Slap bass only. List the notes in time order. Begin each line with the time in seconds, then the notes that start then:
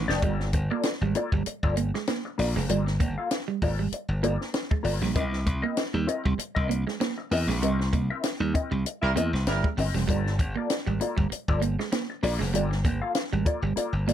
0.09 F1
0.22 G1
0.53 G1
1.01 G#1
1.32 G1
1.46 muted slap bass stroke
1.63 G1
2.39 A#1
2.56 F1
2.69 G1
3.00 G1
3.62 G#1
4.08 G1
4.84 G1
5.02 A#1
5.16 C2
5.47 C2
5.94 D#2
6.26 C2
6.38 muted slap bass stroke
6.56 C2
7.31 E2
7.47 A#1
7.61 C2
7.93 C2
8.40 D#2
8.71 C2
9.02 C2
9.16 E2
9.33 C2
9.46 G1
9.77 G1
9.94 E1
10.08 G1
10.40 G1
10.87 G#1
11.18 G1
11.31 muted slap bass stroke
11.48 G1
12.23 A#1
12.40 F1
12.54 G1
12.85 G1
13.33 G#1
13.62 G1
13.93 G1